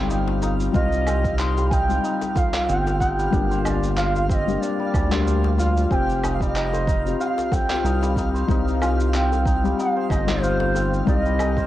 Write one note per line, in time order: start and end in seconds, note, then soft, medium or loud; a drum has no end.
0.00 0.70 G1 loud
0.00 0.72 G3 loud
0.00 1.56 G3 medium
0.00 0.73 C4 medium
0.00 1.07 C4 medium
0.00 0.75 D#4 medium
0.00 0.75 F4 medium
0.00 0.76 G4 loud
0.00 11.67 F5 medium
0.00 0.38 G5 loud
0.10 0.42 D#4 medium
0.10 shaker soft
0.27 djembe slap medium
0.27 djembe tone medium
0.42 1.39 D#4 medium
0.42 djembe tone medium
0.42 shaker medium
0.60 shaker soft
0.72 1.99 C2 loud
0.72 1.84 G3 loud
0.72 1.84 C4 medium
0.72 1.85 D#4 medium
0.72 2.36 F4 medium
0.72 1.86 G4 loud
0.72 1.35 D#5 loud
0.72 kick loud
0.72 shaker soft
0.92 shaker soft
1.06 2.68 C4 medium
1.06 djembe slap soft
1.06 djembe tone soft
1.06 djembe bass medium
1.06 low woodblock medium
1.06 shaker medium
1.24 kick medium
1.24 shaker soft
1.38 1.72 D#4 medium
1.38 1.69 C6 loud
1.38 clap medium
1.38 shaker soft
1.57 3.17 G3 medium
1.57 djembe tone medium
1.57 shaker soft
1.69 2.03 D#4 medium
1.69 2.34 G5 loud
1.69 1.74 G#5 loud
1.69 kick loud
1.69 shaker medium
1.88 2.49 G3 medium
1.88 2.49 C4 medium
1.88 2.49 D#4 medium
1.88 2.50 G4 medium
1.88 shaker soft
2.04 3.00 D#4 medium
2.04 shaker soft
2.21 djembe slap medium
2.21 djembe tone soft
2.21 shaker soft
2.34 3.97 F4 medium
2.34 2.68 F5 loud
2.34 2.38 G5 loud
2.34 kick loud
2.34 djembe tone medium
2.34 djembe bass loud
2.34 shaker medium
2.54 clap medium
2.54 djembe bass loud
2.54 shaker soft
2.66 3.28 G1 medium
2.66 4.29 C4 medium
2.66 2.98 G5 loud
2.66 shaker soft
2.87 djembe slap medium
2.87 shaker soft
2.99 3.39 D#4 medium
2.99 3.10 F#5 loud
2.99 kick medium
2.99 djembe slap soft
2.99 shaker medium
3.10 3.60 G5 loud
3.18 3.38 G3 medium
3.18 shaker soft
3.31 4.57 G1 loud
3.31 4.42 G3 medium
3.31 4.43 A#3 medium
3.31 3.65 D4 medium
3.31 4.43 D4 medium
3.31 kick loud
3.31 shaker soft
3.35 4.44 G4 loud
3.51 5.11 C5 medium
3.51 shaker soft
3.63 4.62 D4 medium
3.63 3.69 D#5 medium
3.63 djembe bass medium
3.63 low woodblock medium
3.63 shaker medium
3.68 3.92 D5 medium
3.83 shaker soft
3.90 3.98 G5 medium
3.96 5.59 F4 medium
3.96 4.28 F5 medium
3.96 clap medium
3.96 shaker soft
4.16 djembe tone medium
4.16 shaker soft
4.28 5.91 C4 medium
4.28 4.34 F5 medium
4.28 kick loud
4.28 shaker medium
4.33 4.55 D#5 loud
4.46 5.07 G3 medium
4.46 5.08 A#3 medium
4.46 5.08 D4 medium
4.46 5.08 G4 medium
4.46 shaker soft
4.55 4.62 D#5 medium
4.60 4.94 D4 medium
4.60 5.58 D5 medium
4.60 shaker soft
4.79 5.96 G3 medium
4.94 5.86 D2 loud
4.94 5.26 D4 medium
4.94 kick loud
4.94 djembe slap soft
4.94 low woodblock medium
4.94 shaker medium
5.10 5.86 G3 medium
5.10 5.87 A#3 medium
5.10 5.88 D4 medium
5.10 5.88 G4 medium
5.10 6.73 C5 medium
5.10 clap medium
5.10 djembe bass loud
5.10 shaker soft
5.27 6.30 D4 medium
5.27 shaker soft
5.44 djembe slap medium
5.44 djembe tone medium
5.58 7.20 F4 medium
5.58 djembe tone medium
5.58 shaker medium
5.77 shaker soft
5.90 7.15 F1 loud
5.90 7.01 C4 medium
5.90 7.52 C4 medium
5.90 7.01 F4 medium
5.90 7.02 G4 loud
5.90 6.30 G5 loud
5.90 5.95 G#5 loud
5.90 kick loud
5.90 shaker soft
6.09 shaker soft
6.23 6.56 D#4 medium
6.23 djembe slap soft
6.23 djembe tone soft
6.23 djembe bass medium
6.23 low woodblock medium
6.23 shaker medium
6.33 6.43 F5 medium
6.40 8.01 G3 medium
6.40 7.22 D#5 loud
6.40 kick medium
6.40 shaker soft
6.56 6.88 D#4 medium
6.56 clap medium
6.56 shaker soft
6.73 8.34 C5 medium
6.73 djembe tone medium
6.73 shaker soft
6.87 7.84 D#4 medium
6.87 kick loud
6.87 shaker medium
7.05 7.65 C4 medium
7.05 7.66 F4 medium
7.05 7.66 G4 medium
7.05 shaker soft
7.20 8.81 F4 medium
7.20 7.26 G5 medium
7.20 shaker soft
7.25 7.54 F5 loud
7.38 djembe slap medium
7.38 shaker soft
7.52 9.13 C4 medium
7.52 8.17 G5 loud
7.52 kick loud
7.52 djembe tone medium
7.52 djembe bass loud
7.52 shaker medium
7.69 8.45 C4 medium
7.69 8.46 F4 medium
7.69 8.47 G4 medium
7.69 clap medium
7.69 djembe bass medium
7.69 shaker soft
7.84 8.44 C2 loud
7.84 8.17 D#4 medium
7.84 shaker soft
8.02 8.54 G3 medium
8.02 djembe slap medium
8.02 shaker soft
8.16 8.49 D#4 medium
8.16 kick medium
8.16 djembe slap medium
8.16 shaker medium
8.34 9.96 C5 medium
8.34 shaker soft
8.48 9.73 C2 loud
8.48 9.58 G3 medium
8.48 9.59 C4 medium
8.48 9.46 D#4 medium
8.48 9.60 D#4 medium
8.48 kick loud
8.48 shaker soft
8.52 9.60 G4 loud
8.68 shaker soft
8.82 10.43 F4 medium
8.82 djembe bass medium
8.82 low woodblock medium
8.82 shaker medium
9.00 shaker soft
9.13 10.75 C4 medium
9.13 9.79 G5 loud
9.13 clap medium
9.13 shaker soft
9.32 djembe tone medium
9.32 shaker soft
9.45 9.78 D#4 medium
9.45 kick loud
9.45 shaker medium
9.63 10.23 G3 medium
9.63 11.24 G3 medium
9.63 10.24 C4 medium
9.63 10.24 D#4 medium
9.63 10.24 G4 medium
9.63 shaker soft
9.78 10.11 D#4 medium
9.78 10.11 F5 medium
9.78 shaker soft
9.96 11.57 C5 medium
10.09 11.02 G1 loud
10.09 11.07 D#4 medium
10.09 10.43 D#5 loud
10.09 kick loud
10.09 djembe slap soft
10.09 low woodblock medium
10.09 shaker medium
10.26 11.03 G3 medium
10.26 11.03 C4 medium
10.26 11.04 D#4 medium
10.26 11.05 G4 loud
10.26 clap medium
10.26 djembe bass medium
10.26 shaker soft
10.41 11.67 F4 medium
10.41 10.92 C5 loud
10.41 shaker soft
10.60 djembe slap medium
10.60 djembe tone medium
10.75 11.67 C4 medium
10.75 djembe tone medium
10.75 shaker medium
10.93 shaker soft
11.05 11.67 C2 loud
11.05 11.67 G3 loud
11.05 11.67 C4 medium
11.05 11.67 D#4 medium
11.05 11.39 D#4 medium
11.05 11.67 G4 loud
11.05 11.67 D#5 loud
11.05 kick loud
11.05 shaker soft
11.25 11.67 G3 medium
11.25 shaker soft
11.39 11.67 D#4 medium
11.39 djembe slap medium
11.39 djembe tone soft
11.39 djembe bass medium
11.39 low woodblock medium
11.39 shaker medium
11.57 11.67 C5 medium
11.57 kick medium
11.57 shaker soft